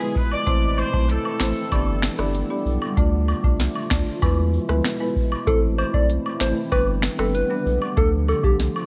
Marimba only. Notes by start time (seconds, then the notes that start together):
0.00 G#3 B3 E4 B4
0.47 A3 C4 E4 C5
0.94 A3 C4 E4 C5
1.41 A3 C4 E4 C5
1.72 B3 D4 G4 D5
2.19 B3 D4 G4 D5
2.50 B3 D4 G4 D5
2.97 A3 D4 F4 D5
3.44 A3 D4 F4 D5
3.91 A3 D4 F4 D5
4.22 G#3 B3 E4 B4
4.69 G#3 B3 E4 B4
5.00 G#3 B3 E4 B4
5.47 A3 C4 E4 C5
5.94 A3 C4 E4 C5
6.41 A3 C4 E4 C5
6.72 G3 B3 D4 B4
7.19 G3 B3 D4 B4
7.50 G3 B3 D4 B4
7.97 F3 A3 D4 A4
8.44 F3 A3 D4 A4